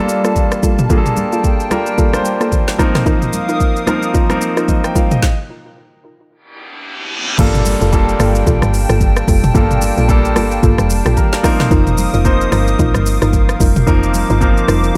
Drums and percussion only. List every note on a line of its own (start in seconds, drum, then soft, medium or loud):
0.09 shaker loud
0.25 cross-stick medium
0.25 shaker medium
0.36 kick medium
0.36 high conga soft
0.36 low conga medium
0.36 shaker medium
0.52 cross-stick medium
0.52 shaker soft
0.63 kick medium
0.63 high conga medium
0.63 shaker medium
0.79 mid tom medium
0.79 shaker soft
0.90 kick loud
0.90 low conga medium
0.90 shaker medium
1.06 mid tom medium
1.06 shaker medium
1.17 high conga medium
1.17 shaker loud
1.33 shaker medium
1.44 kick medium
1.44 shaker medium
1.60 shaker medium
1.71 cross-stick loud
1.71 high conga medium
1.71 shaker medium
1.86 shaker medium
1.98 kick loud
1.98 low conga medium
1.98 shaker medium
2.13 cross-stick loud
2.13 high conga medium
2.13 shaker soft
2.25 shaker loud
2.41 cross-stick medium
2.41 shaker medium
2.52 kick medium
2.52 high conga medium
2.52 low conga medium
2.52 shaker medium
2.68 snare medium
2.68 shaker soft
2.79 kick medium
2.79 cross-stick medium
2.79 high conga medium
2.79 shaker medium
2.95 cross-stick medium
2.95 snare medium
2.95 mid tom medium
2.95 shaker soft
3.06 kick loud
3.06 low conga medium
3.06 shaker medium
3.22 mid tom medium
3.22 shaker medium
3.33 high conga medium
3.33 shaker loud
3.49 shaker medium
3.60 kick loud
3.60 shaker medium
3.76 shaker medium
3.87 cross-stick loud
3.87 high conga medium
3.87 shaker medium
4.03 shaker medium
4.14 kick loud
4.14 low conga medium
4.14 shaker medium
4.30 cross-stick loud
4.30 high conga medium
4.30 shaker soft
4.41 shaker loud
4.57 cross-stick medium
4.57 shaker medium
4.68 kick medium
4.68 high conga medium
4.68 low conga medium
4.68 shaker medium
4.84 cross-stick medium
4.84 shaker soft
4.95 kick medium
4.95 high conga medium
4.95 shaker medium
5.11 mid tom medium
5.11 shaker medium
5.22 kick loud
5.22 snare medium
7.39 kick loud
7.39 crash loud
7.39 low conga medium
7.39 shaker medium
7.55 mid tom medium
7.55 shaker medium
7.65 open hi-hat medium
7.65 high conga medium
7.65 shaker loud
7.81 shaker medium
7.93 kick loud
7.93 shaker medium
8.09 shaker medium
8.20 cross-stick loud
8.20 open hi-hat soft
8.20 high conga medium
8.20 shaker medium
8.35 shaker medium
8.47 kick loud
8.47 low conga medium
8.47 shaker medium
8.62 cross-stick loud
8.62 high conga medium
8.62 shaker medium
8.74 open hi-hat medium
8.74 shaker loud
8.89 cross-stick medium
8.89 shaker medium
9.01 kick medium
9.01 high conga soft
9.01 low conga medium
9.01 shaker medium
9.16 cross-stick loud
9.16 shaker soft
9.28 kick loud
9.28 open hi-hat medium
9.28 high conga medium
9.28 shaker medium
9.44 mid tom medium
9.44 shaker medium
9.55 kick loud
9.55 low conga medium
9.55 shaker medium
9.71 mid tom medium
9.71 shaker medium
9.82 open hi-hat medium
9.82 high conga medium
9.82 shaker loud
9.97 shaker medium
10.09 kick medium
10.09 shaker medium
10.25 shaker medium
10.36 cross-stick loud
10.36 open hi-hat soft
10.36 high conga medium
10.36 shaker medium
10.51 shaker medium
10.63 kick loud
10.63 low conga medium
10.63 shaker medium
10.78 cross-stick loud
10.78 high conga medium
10.78 shaker medium
10.90 open hi-hat medium
10.90 shaker loud
11.06 cross-stick loud
11.06 shaker medium
11.17 kick medium
11.17 high conga medium
11.17 low conga medium
11.17 shaker medium
11.33 snare medium
11.33 shaker soft
11.44 kick loud
11.44 cross-stick loud
11.44 open hi-hat medium
11.44 high conga medium
11.44 shaker medium
11.60 cross-stick medium
11.60 snare medium
11.60 mid tom medium
11.60 shaker medium
11.71 kick loud
11.71 low conga medium
11.71 shaker medium
11.87 mid tom medium
11.87 shaker medium
11.98 open hi-hat medium
11.98 high conga medium
11.98 shaker loud
12.14 shaker medium
12.25 kick loud
12.25 shaker medium
12.41 shaker medium
12.52 cross-stick loud
12.52 open hi-hat soft
12.52 high conga medium
12.52 shaker medium
12.67 shaker medium
12.79 kick loud
12.79 low conga medium
12.79 shaker medium
12.94 cross-stick loud
12.94 high conga medium
12.94 shaker medium
13.06 open hi-hat medium
13.06 shaker loud
13.22 cross-stick medium
13.22 shaker medium
13.33 kick medium
13.33 high conga medium
13.33 low conga medium
13.33 shaker medium
13.49 cross-stick loud
13.49 shaker medium
13.60 kick loud
13.60 open hi-hat medium
13.60 high conga medium
13.60 shaker medium
13.76 mid tom medium
13.76 shaker medium
13.87 kick loud
13.87 low conga medium
13.87 shaker medium
14.03 shaker medium
14.14 open hi-hat medium
14.14 high conga medium
14.14 shaker loud
14.30 shaker medium
14.41 kick loud
14.41 shaker medium
14.57 shaker medium
14.68 cross-stick loud
14.68 open hi-hat soft
14.68 high conga medium
14.68 shaker medium
14.84 shaker medium